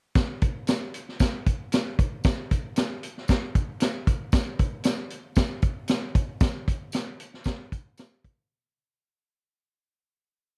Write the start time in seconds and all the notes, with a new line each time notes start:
0.15 kick, snare, closed hi-hat, tambourine
0.42 kick, closed hi-hat
0.67 snare, closed hi-hat, tambourine
0.94 closed hi-hat
1.09 snare
1.20 kick, snare, closed hi-hat, tambourine
1.46 kick, closed hi-hat
1.72 snare, closed hi-hat, tambourine
1.99 kick, closed hi-hat
2.24 kick, snare, closed hi-hat, tambourine
2.51 kick, closed hi-hat
2.76 snare, closed hi-hat, tambourine
3.03 closed hi-hat
3.18 snare
3.28 kick, snare, closed hi-hat, tambourine
3.55 kick, closed hi-hat
3.80 snare, closed hi-hat, tambourine
4.07 kick, closed hi-hat
4.32 kick, snare, closed hi-hat, tambourine
4.59 kick, closed hi-hat
4.84 snare, closed hi-hat, tambourine
5.10 closed hi-hat
5.36 kick, snare, closed hi-hat, tambourine
5.62 kick, closed hi-hat
5.88 snare, closed hi-hat, tambourine
6.15 kick, closed hi-hat
6.41 kick, snare, closed hi-hat, tambourine
6.68 kick, closed hi-hat
6.92 snare, closed hi-hat, tambourine
7.20 closed hi-hat
7.34 snare
7.44 kick, snare, closed hi-hat, tambourine
7.72 kick, closed hi-hat
7.97 snare, closed hi-hat, tambourine
8.24 kick, closed hi-hat